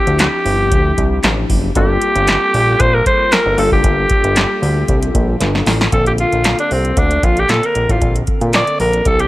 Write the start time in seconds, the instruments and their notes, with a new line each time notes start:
Already playing: analog polysynth F3 C4 D4 E4 G4, alto saxophone G4
0.07 analog synth bass D2, closed hi-hat
0.19 alto saxophone G4, snare, clap, closed hi-hat
0.45 analog synth bass G1, open hi-hat
0.72 analog synth bass D2, kick, closed hi-hat
0.98 analog synth bass C2, kick, closed hi-hat
1.24 analog synth bass A1, snare, clap, closed hi-hat
1.50 analog synth bass F#1, kick, open hi-hat
1.75 analog synth bass G1, analog polysynth G3 A#3 C4 F4 A4, alto saxophone G4, kick, closed hi-hat
2.02 closed hi-hat
2.16 analog synth bass G1, closed hi-hat
2.28 snare, clap, closed hi-hat
2.54 analog synth bass A#1, open hi-hat
2.80 analog synth bass A#1, alto saxophone C5, kick, closed hi-hat
2.94 alto saxophone A#4
3.06 alto saxophone C5, kick, closed hi-hat
3.32 alto saxophone A#4, snare, clap, closed hi-hat
3.46 analog synth bass G1
3.57 analog synth bass G1, analog polysynth G3 A#3 D4 F4 A4, alto saxophone A4, open hi-hat
3.72 analog synth bass F#1, alto saxophone G4, kick
3.84 analog synth bass G1, kick, closed hi-hat
4.10 kick, closed hi-hat
4.24 analog synth bass G1, closed hi-hat
4.36 snare, clap, closed hi-hat
4.62 analog synth bass D2, open hi-hat
4.88 analog synth bass C2, kick, closed hi-hat
5.03 closed hi-hat
5.15 analog synth bass A#1, kick, closed hi-hat
5.40 analog synth bass G1, snare, closed hi-hat
5.55 snare
5.66 analog synth bass A1, snare, open hi-hat
5.81 snare
5.92 analog synth bass A#1, analog polysynth D3 A#3 C4 A4, alto saxophone A4, kick, closed hi-hat
6.06 alto saxophone G4, closed hi-hat
6.18 alto saxophone F4, closed hi-hat
6.32 analog synth bass A#1, closed hi-hat
6.44 snare, clap, closed hi-hat
6.59 alto saxophone D4, closed hi-hat
6.71 analog synth bass C2, alto saxophone C4, open hi-hat
6.85 closed hi-hat
6.97 analog synth bass D2, alto saxophone D4, kick, closed hi-hat
7.11 closed hi-hat
7.23 analog synth bass A#1, alto saxophone F4, kick, closed hi-hat
7.37 alto saxophone G4, closed hi-hat
7.49 analog synth bass A#2, alto saxophone A4, snare, clap, closed hi-hat
7.63 alto saxophone A#4, closed hi-hat
7.75 analog synth bass A#1, closed hi-hat
7.89 analog synth bass A1, alto saxophone F4, kick, closed hi-hat
8.02 analog synth bass A#1, kick, closed hi-hat
8.16 closed hi-hat
8.27 kick, closed hi-hat
8.41 analog synth bass A#2, closed hi-hat
8.53 alto saxophone D5, snare, clap, closed hi-hat
8.67 closed hi-hat
8.80 analog synth bass A#1, alto saxophone A#4, open hi-hat
8.93 closed hi-hat
9.05 analog synth bass C2, alto saxophone A4, kick, closed hi-hat
9.19 alto saxophone G4, closed hi-hat